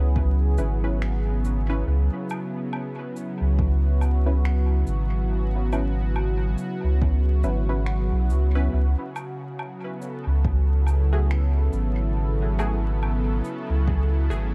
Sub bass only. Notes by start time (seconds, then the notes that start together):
Already playing: C#2
0.58 G#1
1.87 C#2
3.41 C#2
4.87 G#1
6.84 C#2
7.44 G#1
8.12 B1
8.30 C#2
8.73 C#2
10.27 C#2
11.73 G#1
13.70 C#2
14.30 G#1